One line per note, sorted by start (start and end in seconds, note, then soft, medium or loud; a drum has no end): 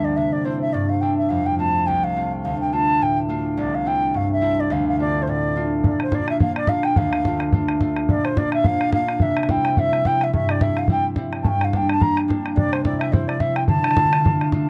0.00 0.22 D2 medium
0.00 0.22 G3 soft
0.00 1.65 A#3 soft
0.00 0.44 C4 soft
0.00 0.45 D4 soft
0.00 0.45 E4 soft
0.04 0.18 D5 medium
0.16 0.79 C3 medium
0.16 0.34 E5 medium
0.32 0.46 D5 medium
0.45 1.01 C4 soft
0.45 1.02 D4 soft
0.45 1.02 E4 soft
0.45 0.61 C5 medium
0.61 0.74 E5 medium
0.73 1.36 G2 medium
0.73 0.91 D5 medium
0.89 1.03 F5 medium
1.01 1.59 C4 soft
1.01 2.72 D4 soft
1.01 1.36 E4 soft
1.01 1.17 G5 medium
1.17 1.31 E5 medium
1.29 1.93 F2 medium
1.29 1.48 F5 medium
1.46 1.58 G5 medium
1.58 2.15 A3 soft
1.58 2.16 C4 soft
1.58 2.16 F4 soft
1.58 1.88 A5 loud
1.86 2.50 C2 medium
1.86 2.05 G5 medium
2.04 2.32 F5 loud
2.16 2.72 A3 soft
2.16 3.85 C4 soft
2.16 2.73 F4 soft
2.44 3.63 D2 medium
2.44 2.59 F5 medium
2.60 2.74 G5 medium
2.73 3.28 A3 soft
2.73 3.29 D4 soft
2.73 3.29 F4 soft
2.73 3.04 A5 medium
3.01 3.63 A2 medium
3.01 3.18 G5 medium
3.29 4.99 A3 soft
3.29 3.85 D4 soft
3.29 3.92 F4 medium
3.57 4.77 C2 medium
3.57 3.76 D5 medium
3.75 3.89 F5 medium
3.85 4.41 C4 soft
3.85 4.42 D4 soft
3.85 4.42 E4 soft
3.85 4.18 G5 loud
4.14 4.77 G2 medium
4.14 4.32 F5 medium
4.32 4.61 E5 medium
4.41 7.41 C4 soft
4.41 4.99 D4 soft
4.41 5.06 E4 medium
4.60 4.73 D5 medium
4.70 5.89 D2 medium
4.70 4.88 F5 medium
4.88 4.99 F5 loud
4.99 5.55 A3 soft
4.99 5.56 D4 soft
4.99 5.56 F4 soft
4.99 5.24 D5 loud
5.22 5.31 C5 medium
5.27 5.89 A2 medium
5.27 5.73 D5 medium
5.56 5.90 A3 soft
5.56 6.12 D4 soft
5.56 6.12 F4 soft
5.84 7.02 A#2 medium
5.84 6.00 D5 medium
5.84 bodhran medium
6.00 6.16 C5 medium
6.00 bodhran medium
6.12 6.39 A#3 soft
6.12 6.40 D4 soft
6.12 6.40 F4 soft
6.12 6.29 D5 medium
6.12 bodhran medium
6.20 bodhran soft
6.28 6.40 E5 medium
6.28 bodhran medium
6.40 6.68 A#3 soft
6.40 6.68 D4 soft
6.40 6.69 F4 medium
6.40 6.55 F5 medium
6.40 bodhran medium
6.56 6.70 D5 medium
6.56 bodhran medium
6.67 7.30 A#3 soft
6.67 7.25 D4 soft
6.67 7.27 F4 medium
6.67 6.86 F5 loud
6.67 bodhran medium
6.83 6.98 G5 medium
6.83 bodhran medium
6.96 8.14 D2 medium
6.96 7.53 F5 loud
6.96 bodhran medium
7.13 bodhran medium
7.24 7.52 A3 soft
7.24 7.53 D4 soft
7.24 7.53 F4 soft
7.24 bodhran medium
7.32 bodhran soft
7.40 bodhran medium
7.52 7.80 A3 soft
7.52 7.80 D4 soft
7.52 7.81 F4 soft
7.52 bodhran medium
7.68 bodhran medium
7.81 8.15 A3 soft
7.81 8.37 D4 soft
7.81 8.37 F4 soft
7.81 bodhran medium
7.96 bodhran medium
8.09 9.26 A#2 medium
8.09 8.26 D5 medium
8.09 bodhran medium
8.25 8.39 C5 medium
8.25 bodhran medium
8.37 8.64 A#3 soft
8.37 8.64 D4 soft
8.37 8.65 F4 soft
8.37 8.53 D5 medium
8.37 bodhran medium
8.45 bodhran soft
8.52 8.67 E5 medium
8.52 bodhran medium
8.64 8.92 A#3 soft
8.64 8.93 D4 soft
8.64 8.93 F4 medium
8.64 8.93 F5 loud
8.64 bodhran medium
8.81 bodhran medium
8.92 11.73 A#3 soft
8.92 11.73 D4 soft
8.92 9.56 F4 medium
8.92 9.23 F5 loud
8.92 bodhran medium
9.08 bodhran medium
9.20 10.38 C3 medium
9.20 9.52 E5 medium
9.20 bodhran medium
9.37 bodhran medium
9.43 bodhran medium
9.49 9.76 G3 soft
9.49 9.77 C4 soft
9.49 9.77 E4 soft
9.49 9.80 G5 loud
9.49 bodhran medium
9.56 bodhran soft
9.65 bodhran medium
9.77 10.04 G3 soft
9.77 10.05 C4 soft
9.77 10.06 E4 soft
9.77 10.08 E5 loud
9.77 bodhran medium
9.93 bodhran medium
10.05 10.60 G3 soft
10.05 10.61 C4 soft
10.05 10.62 E4 soft
10.05 10.25 G5 medium
10.05 bodhran medium
10.21 10.34 E5 medium
10.21 bodhran medium
10.33 11.44 G2 medium
10.33 10.52 E5 medium
10.33 bodhran medium
10.49 10.63 D5 medium
10.49 bodhran medium
10.61 10.87 G3 soft
10.61 10.89 C4 soft
10.61 10.89 E4 soft
10.61 10.80 E5 medium
10.61 bodhran medium
10.69 bodhran soft
10.77 10.90 F5 medium
10.77 bodhran medium
10.88 11.16 G3 soft
10.88 11.17 C4 soft
10.88 11.18 E4 medium
10.88 11.05 G5 medium
10.88 bodhran medium
11.16 11.50 G3 soft
11.16 12.84 C4 soft
11.16 12.84 E4 soft
11.16 bodhran medium
11.33 bodhran medium
11.42 12.62 G2 medium
11.42 11.49 A5 medium
11.42 bodhran medium
11.47 11.66 G5 medium
11.61 11.78 F5 medium
11.61 bodhran medium
11.73 11.99 G3 soft
11.73 12.00 A#3 soft
11.73 12.00 D4 soft
11.73 11.91 G5 medium
11.73 bodhran medium
11.82 bodhran soft
11.89 12.03 A5 medium
11.89 bodhran medium
12.00 12.27 G3 soft
12.00 12.28 A#3 soft
12.00 12.29 D4 medium
12.00 12.17 A#5 medium
12.00 bodhran medium
12.17 bodhran medium
12.28 12.62 G3 soft
12.28 14.03 A#3 soft
12.28 13.97 D4 soft
12.28 bodhran medium
12.46 bodhran medium
12.56 13.74 C3 medium
12.56 12.74 D5 medium
12.56 bodhran medium
12.73 12.84 C5 medium
12.73 bodhran medium
12.84 13.11 G3 soft
12.84 13.12 C4 soft
12.84 13.13 E4 soft
12.84 13.01 D5 medium
12.84 bodhran medium
12.93 bodhran soft
12.99 13.14 E5 medium
12.99 bodhran medium
13.12 13.39 G3 soft
13.12 13.40 C4 soft
13.12 13.40 E4 medium
13.12 13.29 C5 medium
13.12 bodhran medium
13.28 13.41 D5 medium
13.28 bodhran medium
13.40 13.74 G3 soft
13.40 14.69 C4 soft
13.40 14.04 E4 medium
13.40 13.57 E5 medium
13.40 bodhran medium
13.56 13.67 G5 medium
13.56 bodhran medium
13.67 14.69 D3 medium
13.67 14.48 A5 loud
13.67 bodhran medium
13.84 bodhran medium
13.91 bodhran medium
13.97 14.24 A3 soft
13.97 14.24 D4 soft
13.97 14.24 F4 soft
13.97 bodhran medium
14.05 bodhran soft
14.13 bodhran medium
14.24 14.53 A3 soft
14.24 14.53 D4 soft
14.24 14.53 F4 medium
14.24 bodhran medium
14.41 bodhran medium
14.52 14.69 A3 soft
14.52 14.69 D4 soft
14.52 14.69 F4 medium
14.52 bodhran medium